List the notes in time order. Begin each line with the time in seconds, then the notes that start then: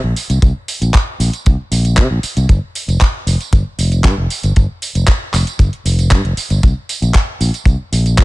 0.04 A#1
0.16 open hi-hat, tambourine
0.30 C2, closed hi-hat, tambourine
0.42 C2, kick, closed hi-hat, tambourine
0.68 open hi-hat, tambourine
0.81 A#1, closed hi-hat, tambourine
0.94 kick, clap, closed hi-hat, tambourine
1.20 A#1, open hi-hat, tambourine
1.33 closed hi-hat, tambourine
1.46 C2, kick, closed hi-hat, tambourine
1.71 A#1, open hi-hat, tambourine
1.85 closed hi-hat, tambourine
1.97 C3, kick, clap, closed hi-hat, tambourine
2.11 A#1
2.23 muted fingered electric bass stroke, open hi-hat, tambourine
2.37 C2, closed hi-hat, tambourine
2.49 G1, kick, closed hi-hat, tambourine
2.75 open hi-hat, tambourine
2.88 F1, closed hi-hat, tambourine
3.01 kick, clap, closed hi-hat
3.27 F1, open hi-hat, tambourine
3.41 closed hi-hat, tambourine
3.53 G1, kick, closed hi-hat, tambourine
3.78 F1, open hi-hat, tambourine
3.92 closed hi-hat, tambourine
4.04 G2, kick, clap, closed hi-hat, tambourine
4.18 F1
4.30 open hi-hat, tambourine
4.43 G1, closed hi-hat, tambourine
4.56 G1, kick, closed hi-hat, tambourine
4.82 open hi-hat, tambourine
4.95 F1, closed hi-hat, tambourine
5.08 kick, clap, closed hi-hat
5.34 F1, clap, open hi-hat, tambourine
5.47 closed hi-hat, tambourine
5.59 G1, kick, closed hi-hat, tambourine
5.73 closed hi-hat
5.85 F1, open hi-hat, tambourine
5.99 closed hi-hat, tambourine
6.11 G2, kick, clap, closed hi-hat
6.24 F1, closed hi-hat
6.37 muted fingered electric bass stroke, open hi-hat, tambourine
6.50 G1, closed hi-hat, tambourine
6.63 C2, kick, closed hi-hat, tambourine
6.89 open hi-hat, tambourine
7.02 A#1, closed hi-hat, tambourine
7.14 kick, clap, closed hi-hat, tambourine
7.41 A#1, open hi-hat, tambourine
7.54 closed hi-hat, tambourine
7.65 C2, kick, closed hi-hat, tambourine
7.92 A#1, open hi-hat, tambourine
8.06 closed hi-hat, tambourine
8.18 C3, kick, clap, closed hi-hat